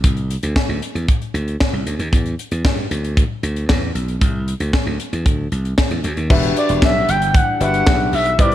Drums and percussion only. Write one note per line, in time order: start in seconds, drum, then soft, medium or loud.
0.04 kick loud
0.04 closed hi-hat medium
0.17 closed hi-hat soft
0.30 closed hi-hat medium
0.43 closed hi-hat medium
0.56 kick loud
0.56 snare loud
0.82 closed hi-hat medium
0.96 closed hi-hat soft
1.08 kick loud
1.08 closed hi-hat medium
1.22 closed hi-hat soft
1.35 closed hi-hat medium
1.48 closed hi-hat soft
1.60 kick loud
1.60 snare loud
1.87 closed hi-hat medium
2.00 closed hi-hat soft
2.13 kick loud
2.13 closed hi-hat medium
2.26 closed hi-hat soft
2.39 closed hi-hat medium
2.51 closed hi-hat soft
2.65 kick loud
2.65 snare loud
2.91 closed hi-hat medium
3.04 closed hi-hat soft
3.17 kick loud
3.17 closed hi-hat medium
3.43 closed hi-hat medium
3.56 closed hi-hat soft
3.69 kick loud
3.69 snare loud
3.95 closed hi-hat medium
4.08 closed hi-hat soft
4.21 kick loud
4.21 closed hi-hat medium
4.48 closed hi-hat medium
4.60 closed hi-hat soft
4.73 kick loud
4.73 snare loud
5.00 closed hi-hat medium
5.13 closed hi-hat soft
5.26 kick medium
5.26 closed hi-hat medium
5.52 closed hi-hat medium
5.65 closed hi-hat soft
5.78 kick loud
5.78 snare loud
5.90 closed hi-hat soft
6.04 closed hi-hat medium
6.17 closed hi-hat soft
6.30 kick loud
6.30 crash loud
6.43 closed hi-hat soft
6.57 closed hi-hat medium
6.69 closed hi-hat medium
6.82 kick loud
6.82 snare loud
7.09 closed hi-hat loud
7.22 closed hi-hat soft
7.34 kick loud
7.34 closed hi-hat loud
7.61 closed hi-hat medium
7.74 closed hi-hat soft
7.87 kick loud
7.87 snare loud
8.13 open hi-hat medium
8.26 closed hi-hat soft
8.39 kick loud
8.39 closed hi-hat medium
8.52 closed hi-hat soft